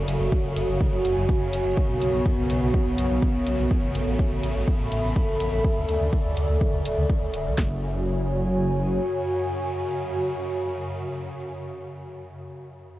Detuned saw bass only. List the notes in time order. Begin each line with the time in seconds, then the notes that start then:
0.08 F#1
0.20 F#1
0.44 F#1
0.56 F#1
0.69 F#1
0.93 F#1
1.05 F#1
1.17 F#1
1.41 F#1
1.53 F#1
1.65 F#1
1.89 B1
2.02 B1
2.14 B1
2.38 B1
2.50 B1
2.62 B1
2.86 B1
2.98 B1
3.10 B1
3.35 B1
3.47 B1
3.59 B1
3.83 A1
3.95 A1
4.07 A1
4.31 A1
4.43 A1
4.56 A1
4.80 A1
4.92 A1
5.04 A1
5.28 A1
5.40 A1
5.52 A1
5.76 D2
5.89 D2
6.01 D2
6.25 D2
6.37 D2
6.49 D2
6.73 D2
6.85 D1
6.98 D2
7.22 D2
7.34 D1
7.46 D2
7.58 F#1